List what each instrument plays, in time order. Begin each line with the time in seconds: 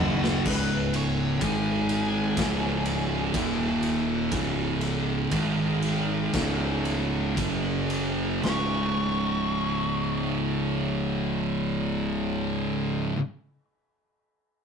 Already playing: fingered electric bass F#1, distorted electric guitar F#2 C#3 F#3, tonewheel organ F#3 C#4 G#4, lead electric guitar F#5
0.24 snare
0.45 fingered electric bass C#1, distorted electric guitar C#2 G#2 C#3, tonewheel organ C#4 G#4 C#5, lead electric guitar B4, kick, crash
0.94 lead electric guitar C#5, ride
1.41 fingered electric bass G#1, distorted electric guitar G#2 D#3 G#3, tonewheel organ G#3 D#4, lead electric guitar G#5, kick, ride
1.89 ride
2.36 fingered electric bass C#1, distorted electric guitar C#2 G#2 C#3, tonewheel organ C#4 C#5, kick, snare, ride
2.85 ride
3.34 fingered electric bass D#1, distorted electric guitar D#2 A#2 D#3, tonewheel organ D#4 A#4 F5, kick, ride
3.83 ride
4.32 fingered electric bass C#1, distorted electric guitar C#2 G#2 C#3, tonewheel organ C#4 G#4 C#5, kick, ride
4.81 ride
5.31 fingered electric bass G#1, distorted electric guitar G#2 D#3 G#3, tonewheel organ G#3 D#4, kick, ride
5.82 ride
6.33 fingered electric bass C#1, distorted electric guitar C#2 G#2 C#3, tonewheel organ C#4 C#5, kick, snare, ride
6.85 ride
7.37 fingered electric bass F#1, distorted electric guitar F#2 C#3 F#3, tonewheel organ F#3 G#4, kick, ride
7.90 ride
8.43 fingered electric bass C#1, distorted electric guitar C#2 G#2, tonewheel organ C#4 G#4 C#5, lead electric guitar C#6, snare, china
8.47 distorted electric guitar C#3